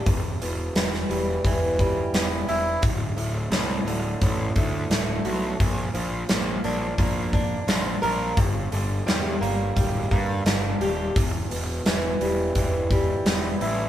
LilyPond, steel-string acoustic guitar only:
\new Staff \with { instrumentName = "Steel-string acoustic guitar" } { \clef bass \time 4/4 \key e \minor \tempo 4 = 86 e,8 b,8 e8 g8 e8 g8 b8 e'8 | d,8 a,8 a,8 d8 a,8 d8 a8 fis'8 | bes,8 f8 bes8 d'8 bes8 d'8 f'8 bes'8 | g,8 d8 g8 bes8 g8 bes8 d'8 g'8 |
e,8 b,8 e8 g8 e8 g8 b8 e'8 | }